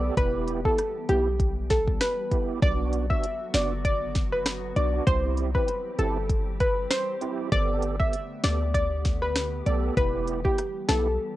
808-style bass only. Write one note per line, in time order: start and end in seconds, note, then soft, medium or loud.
0.00 0.10 B1 medium
0.17 0.65 E1 loud
1.09 1.97 B1 medium
2.62 3.10 B1 loud
3.54 4.72 F#1 medium
4.76 5.00 B1 medium
5.07 5.55 C2 loud
5.99 6.87 G1 medium
7.52 8.00 G1 loud
8.44 9.62 D2 medium
9.67 9.90 B1 medium
9.97 10.45 E1 loud
10.89 11.18 B1 medium